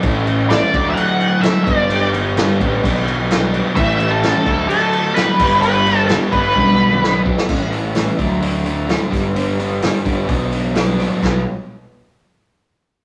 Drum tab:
CC |x-x-x-x-x-x-x-x-|x-x-x-x-x-x-x-x-|x-x-x-x-x-x-x-x-|x-x-x-x---------|
HH |----------------|----------------|----------------|----------------|
SD |----o-------o---|----o-------o---|----o-------o---|----o-------o--o|
T1 |----------------|----------------|----------------|--------oo------|
T2 |----------------|----------------|----------------|-----------o----|
BD |o-----o-------o-|------o-o-------|o-----o-------o-|------o-o-----o-|

CC |x---------------|----------------|x---------------|
HH |--o-o-o-o-o-o-o-|o-o-o-o-o-o-o-o-|----------------|
SD |----o-------o-o-|----o-------o-o-|o---------------|
T1 |----------------|----------------|----------------|
T2 |----------------|----------------|----------------|
BD |o-----o-------o-|------o-o-------|o---------------|